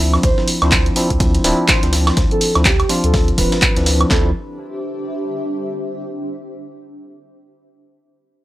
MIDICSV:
0, 0, Header, 1, 6, 480
1, 0, Start_track
1, 0, Tempo, 483871
1, 232, Time_signature, 4, 2, 24, 8
1, 8379, End_track
2, 0, Start_track
2, 0, Title_t, "Soft synth lead"
2, 0, Program_c, 0, 80
2, 0, Note_on_c, 0, 64, 99
2, 155, Note_off_c, 0, 64, 0
2, 233, Note_on_c, 0, 72, 104
2, 477, Note_off_c, 0, 72, 0
2, 615, Note_on_c, 0, 72, 100
2, 858, Note_off_c, 0, 72, 0
2, 1673, Note_on_c, 0, 72, 97
2, 1917, Note_off_c, 0, 72, 0
2, 2056, Note_on_c, 0, 72, 94
2, 2203, Note_off_c, 0, 72, 0
2, 2296, Note_on_c, 0, 69, 97
2, 2538, Note_off_c, 0, 69, 0
2, 2633, Note_on_c, 0, 67, 97
2, 2877, Note_off_c, 0, 67, 0
2, 3015, Note_on_c, 0, 69, 99
2, 3258, Note_off_c, 0, 69, 0
2, 3352, Note_on_c, 0, 71, 99
2, 3994, Note_off_c, 0, 71, 0
2, 4072, Note_on_c, 0, 69, 96
2, 4259, Note_off_c, 0, 69, 0
2, 8379, End_track
3, 0, Start_track
3, 0, Title_t, "Ambient pad"
3, 0, Program_c, 1, 92
3, 4072, Note_on_c, 1, 62, 81
3, 4158, Note_on_c, 1, 67, 83
3, 4234, Note_on_c, 1, 72, 81
3, 4292, Note_on_c, 1, 76, 83
3, 5952, Note_off_c, 1, 62, 0
3, 5952, Note_off_c, 1, 76, 0
3, 5953, Note_off_c, 1, 67, 0
3, 5953, Note_off_c, 1, 72, 0
3, 8379, End_track
4, 0, Start_track
4, 0, Title_t, "Tine electric piano"
4, 0, Program_c, 2, 4
4, 0, Note_on_c, 2, 53, 81
4, 0, Note_on_c, 2, 60, 75
4, 0, Note_on_c, 2, 62, 74
4, 0, Note_on_c, 2, 64, 90
4, 580, Note_off_c, 2, 53, 0
4, 581, Note_off_c, 2, 60, 0
4, 581, Note_off_c, 2, 62, 0
4, 582, Note_off_c, 2, 64, 0
4, 614, Note_on_c, 2, 53, 91
4, 615, Note_on_c, 2, 60, 82
4, 616, Note_on_c, 2, 62, 81
4, 617, Note_on_c, 2, 64, 100
4, 929, Note_off_c, 2, 53, 0
4, 929, Note_off_c, 2, 60, 0
4, 929, Note_off_c, 2, 62, 0
4, 930, Note_off_c, 2, 64, 0
4, 951, Note_on_c, 2, 53, 80
4, 952, Note_on_c, 2, 60, 75
4, 953, Note_on_c, 2, 62, 74
4, 953, Note_on_c, 2, 64, 92
4, 1408, Note_off_c, 2, 53, 0
4, 1409, Note_off_c, 2, 60, 0
4, 1409, Note_off_c, 2, 62, 0
4, 1409, Note_off_c, 2, 64, 0
4, 1431, Note_on_c, 2, 53, 98
4, 1431, Note_on_c, 2, 60, 91
4, 1433, Note_on_c, 2, 62, 89
4, 1433, Note_on_c, 2, 64, 107
4, 1780, Note_off_c, 2, 53, 0
4, 1780, Note_off_c, 2, 60, 0
4, 1781, Note_off_c, 2, 62, 0
4, 1781, Note_off_c, 2, 64, 0
4, 1813, Note_on_c, 2, 53, 74
4, 1814, Note_on_c, 2, 60, 69
4, 1816, Note_on_c, 2, 62, 70
4, 1817, Note_on_c, 2, 64, 82
4, 2500, Note_off_c, 2, 53, 0
4, 2500, Note_off_c, 2, 60, 0
4, 2501, Note_off_c, 2, 62, 0
4, 2502, Note_off_c, 2, 64, 0
4, 2534, Note_on_c, 2, 53, 79
4, 2534, Note_on_c, 2, 60, 70
4, 2535, Note_on_c, 2, 62, 70
4, 2536, Note_on_c, 2, 64, 86
4, 2682, Note_off_c, 2, 53, 0
4, 2683, Note_off_c, 2, 60, 0
4, 2683, Note_off_c, 2, 62, 0
4, 2684, Note_off_c, 2, 64, 0
4, 2869, Note_on_c, 2, 53, 99
4, 2871, Note_on_c, 2, 60, 90
4, 2873, Note_on_c, 2, 62, 90
4, 2874, Note_on_c, 2, 65, 108
4, 3699, Note_off_c, 2, 53, 0
4, 3700, Note_off_c, 2, 60, 0
4, 3701, Note_off_c, 2, 62, 0
4, 3701, Note_off_c, 2, 65, 0
4, 3734, Note_on_c, 2, 53, 78
4, 3735, Note_on_c, 2, 60, 73
4, 3736, Note_on_c, 2, 62, 76
4, 3737, Note_on_c, 2, 64, 90
4, 4057, Note_off_c, 2, 53, 0
4, 4061, Note_off_c, 2, 60, 0
4, 4061, Note_off_c, 2, 62, 0
4, 4061, Note_off_c, 2, 64, 0
4, 4069, Note_on_c, 2, 53, 87
4, 4072, Note_on_c, 2, 60, 82
4, 4073, Note_on_c, 2, 62, 78
4, 4076, Note_on_c, 2, 64, 94
4, 4258, Note_off_c, 2, 53, 0
4, 4259, Note_off_c, 2, 60, 0
4, 4260, Note_off_c, 2, 62, 0
4, 4261, Note_off_c, 2, 64, 0
4, 8379, End_track
5, 0, Start_track
5, 0, Title_t, "Sub bass"
5, 0, Program_c, 3, 38
5, 0, Note_on_c, 3, 38, 87
5, 179, Note_off_c, 3, 38, 0
5, 232, Note_on_c, 3, 38, 100
5, 326, Note_off_c, 3, 38, 0
5, 616, Note_on_c, 3, 38, 92
5, 899, Note_off_c, 3, 38, 0
5, 1095, Note_on_c, 3, 38, 99
5, 1378, Note_off_c, 3, 38, 0
5, 1433, Note_on_c, 3, 26, 97
5, 1526, Note_off_c, 3, 26, 0
5, 1816, Note_on_c, 3, 38, 86
5, 2099, Note_off_c, 3, 38, 0
5, 2152, Note_on_c, 3, 38, 102
5, 2246, Note_off_c, 3, 38, 0
5, 2536, Note_on_c, 3, 38, 91
5, 2819, Note_off_c, 3, 38, 0
5, 3015, Note_on_c, 3, 38, 103
5, 3299, Note_off_c, 3, 38, 0
5, 3352, Note_on_c, 3, 26, 95
5, 3446, Note_off_c, 3, 26, 0
5, 3735, Note_on_c, 3, 38, 84
5, 4019, Note_off_c, 3, 38, 0
5, 4072, Note_on_c, 3, 38, 100
5, 4295, Note_off_c, 3, 38, 0
5, 8379, End_track
6, 0, Start_track
6, 0, Title_t, "Drums"
6, 134, Note_on_c, 9, 76, 66
6, 135, Note_on_c, 9, 38, 43
6, 232, Note_on_c, 9, 36, 114
6, 232, Note_on_c, 9, 42, 84
6, 232, Note_on_c, 9, 51, 89
6, 233, Note_off_c, 9, 76, 0
6, 234, Note_off_c, 9, 38, 0
6, 331, Note_off_c, 9, 42, 0
6, 332, Note_off_c, 9, 36, 0
6, 332, Note_off_c, 9, 51, 0
6, 375, Note_on_c, 9, 38, 52
6, 472, Note_on_c, 9, 46, 97
6, 472, Note_on_c, 9, 51, 72
6, 474, Note_off_c, 9, 38, 0
6, 571, Note_off_c, 9, 46, 0
6, 571, Note_off_c, 9, 51, 0
6, 614, Note_on_c, 9, 42, 38
6, 614, Note_on_c, 9, 76, 70
6, 615, Note_on_c, 9, 38, 45
6, 709, Note_on_c, 9, 39, 116
6, 712, Note_off_c, 9, 38, 0
6, 712, Note_off_c, 9, 42, 0
6, 712, Note_on_c, 9, 36, 113
6, 712, Note_on_c, 9, 38, 115
6, 712, Note_on_c, 9, 42, 80
6, 712, Note_on_c, 9, 51, 90
6, 713, Note_off_c, 9, 76, 0
6, 808, Note_off_c, 9, 39, 0
6, 811, Note_off_c, 9, 36, 0
6, 811, Note_off_c, 9, 38, 0
6, 811, Note_off_c, 9, 42, 0
6, 811, Note_off_c, 9, 51, 0
6, 855, Note_on_c, 9, 42, 38
6, 952, Note_on_c, 9, 38, 46
6, 952, Note_on_c, 9, 46, 107
6, 954, Note_off_c, 9, 42, 0
6, 1051, Note_off_c, 9, 38, 0
6, 1051, Note_off_c, 9, 46, 0
6, 1095, Note_on_c, 9, 36, 59
6, 1095, Note_on_c, 9, 42, 54
6, 1192, Note_off_c, 9, 36, 0
6, 1192, Note_off_c, 9, 42, 0
6, 1192, Note_on_c, 9, 36, 116
6, 1192, Note_on_c, 9, 42, 86
6, 1192, Note_on_c, 9, 51, 91
6, 1291, Note_off_c, 9, 36, 0
6, 1291, Note_off_c, 9, 42, 0
6, 1291, Note_off_c, 9, 51, 0
6, 1335, Note_on_c, 9, 42, 37
6, 1335, Note_on_c, 9, 51, 47
6, 1431, Note_off_c, 9, 51, 0
6, 1431, Note_on_c, 9, 38, 109
6, 1431, Note_on_c, 9, 51, 84
6, 1432, Note_on_c, 9, 46, 103
6, 1434, Note_off_c, 9, 42, 0
6, 1531, Note_off_c, 9, 38, 0
6, 1531, Note_off_c, 9, 46, 0
6, 1531, Note_off_c, 9, 51, 0
6, 1668, Note_on_c, 9, 39, 120
6, 1672, Note_on_c, 9, 36, 114
6, 1672, Note_on_c, 9, 38, 121
6, 1672, Note_on_c, 9, 42, 83
6, 1672, Note_on_c, 9, 51, 93
6, 1768, Note_off_c, 9, 39, 0
6, 1771, Note_off_c, 9, 38, 0
6, 1771, Note_off_c, 9, 42, 0
6, 1771, Note_off_c, 9, 51, 0
6, 1772, Note_off_c, 9, 36, 0
6, 1814, Note_on_c, 9, 38, 45
6, 1815, Note_on_c, 9, 42, 58
6, 1912, Note_off_c, 9, 38, 0
6, 1912, Note_on_c, 9, 38, 106
6, 1912, Note_on_c, 9, 46, 101
6, 1912, Note_on_c, 9, 51, 79
6, 1914, Note_off_c, 9, 42, 0
6, 2011, Note_off_c, 9, 38, 0
6, 2011, Note_off_c, 9, 46, 0
6, 2011, Note_off_c, 9, 51, 0
6, 2054, Note_on_c, 9, 38, 108
6, 2054, Note_on_c, 9, 51, 82
6, 2054, Note_on_c, 9, 76, 67
6, 2151, Note_on_c, 9, 42, 82
6, 2152, Note_off_c, 9, 38, 0
6, 2152, Note_off_c, 9, 51, 0
6, 2152, Note_on_c, 9, 36, 119
6, 2152, Note_on_c, 9, 38, 107
6, 2152, Note_on_c, 9, 51, 82
6, 2153, Note_off_c, 9, 76, 0
6, 2251, Note_off_c, 9, 36, 0
6, 2251, Note_off_c, 9, 38, 0
6, 2251, Note_off_c, 9, 42, 0
6, 2251, Note_off_c, 9, 51, 0
6, 2294, Note_on_c, 9, 42, 39
6, 2391, Note_on_c, 9, 46, 100
6, 2392, Note_on_c, 9, 51, 71
6, 2393, Note_off_c, 9, 42, 0
6, 2490, Note_off_c, 9, 46, 0
6, 2491, Note_off_c, 9, 51, 0
6, 2534, Note_on_c, 9, 42, 39
6, 2534, Note_on_c, 9, 76, 67
6, 2535, Note_on_c, 9, 38, 37
6, 2628, Note_on_c, 9, 39, 117
6, 2631, Note_off_c, 9, 42, 0
6, 2631, Note_on_c, 9, 42, 80
6, 2632, Note_off_c, 9, 38, 0
6, 2632, Note_on_c, 9, 36, 120
6, 2632, Note_on_c, 9, 38, 117
6, 2632, Note_on_c, 9, 51, 88
6, 2633, Note_off_c, 9, 76, 0
6, 2728, Note_off_c, 9, 39, 0
6, 2731, Note_off_c, 9, 36, 0
6, 2731, Note_off_c, 9, 38, 0
6, 2731, Note_off_c, 9, 42, 0
6, 2731, Note_off_c, 9, 51, 0
6, 2774, Note_on_c, 9, 42, 39
6, 2774, Note_on_c, 9, 76, 62
6, 2871, Note_on_c, 9, 46, 107
6, 2872, Note_on_c, 9, 38, 51
6, 2872, Note_on_c, 9, 51, 70
6, 2873, Note_off_c, 9, 42, 0
6, 2873, Note_off_c, 9, 76, 0
6, 2970, Note_off_c, 9, 46, 0
6, 2971, Note_off_c, 9, 38, 0
6, 2971, Note_off_c, 9, 51, 0
6, 3014, Note_on_c, 9, 42, 53
6, 3112, Note_on_c, 9, 36, 113
6, 3112, Note_on_c, 9, 38, 107
6, 3112, Note_on_c, 9, 46, 60
6, 3112, Note_on_c, 9, 51, 82
6, 3113, Note_off_c, 9, 42, 0
6, 3211, Note_off_c, 9, 36, 0
6, 3211, Note_off_c, 9, 38, 0
6, 3211, Note_off_c, 9, 46, 0
6, 3211, Note_off_c, 9, 51, 0
6, 3255, Note_on_c, 9, 42, 37
6, 3352, Note_on_c, 9, 36, 60
6, 3352, Note_on_c, 9, 38, 48
6, 3352, Note_on_c, 9, 46, 105
6, 3352, Note_on_c, 9, 51, 64
6, 3354, Note_off_c, 9, 42, 0
6, 3451, Note_off_c, 9, 36, 0
6, 3451, Note_off_c, 9, 38, 0
6, 3451, Note_off_c, 9, 46, 0
6, 3451, Note_off_c, 9, 51, 0
6, 3494, Note_on_c, 9, 38, 109
6, 3494, Note_on_c, 9, 51, 81
6, 3495, Note_on_c, 9, 42, 40
6, 3589, Note_on_c, 9, 39, 126
6, 3592, Note_off_c, 9, 42, 0
6, 3592, Note_on_c, 9, 36, 116
6, 3592, Note_on_c, 9, 42, 86
6, 3594, Note_off_c, 9, 38, 0
6, 3594, Note_off_c, 9, 51, 0
6, 3688, Note_off_c, 9, 39, 0
6, 3691, Note_off_c, 9, 36, 0
6, 3691, Note_off_c, 9, 42, 0
6, 3734, Note_on_c, 9, 38, 47
6, 3734, Note_on_c, 9, 51, 62
6, 3735, Note_on_c, 9, 42, 57
6, 3832, Note_off_c, 9, 38, 0
6, 3832, Note_off_c, 9, 51, 0
6, 3832, Note_on_c, 9, 38, 107
6, 3832, Note_on_c, 9, 46, 104
6, 3832, Note_on_c, 9, 51, 80
6, 3834, Note_off_c, 9, 42, 0
6, 3931, Note_off_c, 9, 38, 0
6, 3931, Note_off_c, 9, 46, 0
6, 3931, Note_off_c, 9, 51, 0
6, 3974, Note_on_c, 9, 42, 39
6, 3974, Note_on_c, 9, 76, 65
6, 4072, Note_on_c, 9, 36, 105
6, 4072, Note_on_c, 9, 38, 106
6, 4072, Note_on_c, 9, 39, 91
6, 4073, Note_off_c, 9, 42, 0
6, 4073, Note_off_c, 9, 76, 0
6, 4171, Note_off_c, 9, 36, 0
6, 4171, Note_off_c, 9, 38, 0
6, 4171, Note_off_c, 9, 39, 0
6, 8379, End_track
0, 0, End_of_file